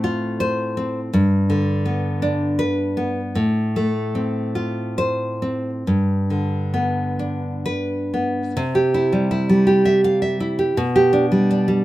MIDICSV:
0, 0, Header, 1, 2, 480
1, 0, Start_track
1, 0, Key_signature, 0, "major"
1, 0, Tempo, 730816
1, 747, Time_signature, 6, 3, 24, 8
1, 1706, Tempo, 776197
1, 2666, Tempo, 827586
1, 3146, Tempo, 883652
1, 4106, Tempo, 913242
1, 5066, Tempo, 732601
1, 7211, End_track
2, 0, Start_track
2, 0, Title_t, "Nylon-string guitar"
2, 0, Program_c, 0, 24
2, 0, Note_on_c, 0, 45, 76
2, 0, Note_on_c, 0, 57, 52
2, 0, Note_on_c, 0, 60, 58
2, 25, Note_on_c, 0, 65, 66
2, 263, Note_off_c, 0, 57, 0
2, 264, Note_on_c, 0, 72, 73
2, 498, Note_off_c, 0, 60, 0
2, 506, Note_on_c, 0, 60, 55
2, 651, Note_off_c, 0, 72, 0
2, 718, Note_off_c, 0, 45, 0
2, 745, Note_on_c, 0, 43, 66
2, 746, Note_off_c, 0, 65, 0
2, 747, Note_off_c, 0, 60, 0
2, 983, Note_on_c, 0, 50, 52
2, 1218, Note_on_c, 0, 59, 50
2, 1459, Note_on_c, 0, 62, 55
2, 1700, Note_on_c, 0, 71, 69
2, 1706, Note_off_c, 0, 50, 0
2, 1928, Note_off_c, 0, 59, 0
2, 1936, Note_on_c, 0, 59, 52
2, 2079, Note_off_c, 0, 71, 0
2, 2153, Note_off_c, 0, 43, 0
2, 2174, Note_on_c, 0, 45, 59
2, 2176, Note_off_c, 0, 59, 0
2, 2177, Note_off_c, 0, 62, 0
2, 2426, Note_on_c, 0, 57, 51
2, 2666, Note_on_c, 0, 60, 49
2, 2900, Note_on_c, 0, 65, 57
2, 3147, Note_on_c, 0, 72, 73
2, 3148, Note_off_c, 0, 57, 0
2, 3380, Note_off_c, 0, 60, 0
2, 3387, Note_on_c, 0, 60, 45
2, 3534, Note_off_c, 0, 72, 0
2, 3608, Note_off_c, 0, 45, 0
2, 3631, Note_off_c, 0, 60, 0
2, 3631, Note_off_c, 0, 65, 0
2, 3632, Note_on_c, 0, 43, 56
2, 3866, Note_on_c, 0, 50, 41
2, 4101, Note_on_c, 0, 59, 50
2, 4342, Note_on_c, 0, 62, 48
2, 4585, Note_on_c, 0, 71, 69
2, 4592, Note_off_c, 0, 50, 0
2, 4831, Note_off_c, 0, 59, 0
2, 4837, Note_on_c, 0, 59, 48
2, 4980, Note_off_c, 0, 71, 0
2, 5046, Note_off_c, 0, 43, 0
2, 5063, Note_off_c, 0, 59, 0
2, 5063, Note_on_c, 0, 48, 74
2, 5066, Note_off_c, 0, 62, 0
2, 5182, Note_on_c, 0, 67, 57
2, 5310, Note_on_c, 0, 64, 54
2, 5429, Note_on_c, 0, 55, 50
2, 5542, Note_off_c, 0, 64, 0
2, 5549, Note_on_c, 0, 64, 61
2, 5663, Note_off_c, 0, 55, 0
2, 5671, Note_on_c, 0, 55, 57
2, 5776, Note_off_c, 0, 67, 0
2, 5784, Note_on_c, 0, 67, 70
2, 5904, Note_off_c, 0, 64, 0
2, 5906, Note_on_c, 0, 76, 62
2, 6028, Note_off_c, 0, 76, 0
2, 6031, Note_on_c, 0, 77, 65
2, 6143, Note_off_c, 0, 77, 0
2, 6146, Note_on_c, 0, 76, 56
2, 6267, Note_on_c, 0, 64, 57
2, 6379, Note_off_c, 0, 67, 0
2, 6382, Note_off_c, 0, 55, 0
2, 6387, Note_on_c, 0, 67, 62
2, 6472, Note_off_c, 0, 48, 0
2, 6503, Note_off_c, 0, 76, 0
2, 6504, Note_off_c, 0, 64, 0
2, 6504, Note_off_c, 0, 67, 0
2, 6508, Note_on_c, 0, 47, 74
2, 6629, Note_on_c, 0, 67, 74
2, 6741, Note_on_c, 0, 62, 59
2, 6819, Note_off_c, 0, 67, 0
2, 6864, Note_on_c, 0, 55, 49
2, 6981, Note_off_c, 0, 62, 0
2, 6989, Note_on_c, 0, 62, 56
2, 7094, Note_off_c, 0, 55, 0
2, 7102, Note_on_c, 0, 55, 59
2, 7208, Note_off_c, 0, 47, 0
2, 7211, Note_off_c, 0, 55, 0
2, 7211, Note_off_c, 0, 62, 0
2, 7211, End_track
0, 0, End_of_file